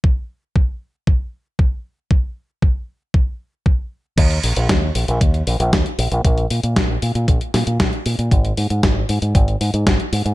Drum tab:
CC |----------------|----------------|x---------------|----------------|
HH |----------------|----------------|xxoxx-oxxxoxxxox|xxoxx-oxxxoxxxox|
SD |----------------|----------------|----o-------o---|----o-----o-o---|
BD |o---o---o---o---|o---o---o---o---|o---o---o---o---|o---o---o---o---|

CC |----------------|
HH |xxoxx-oxxxoxxxox|
SD |----o-------o---|
BD |o---o---o---o---|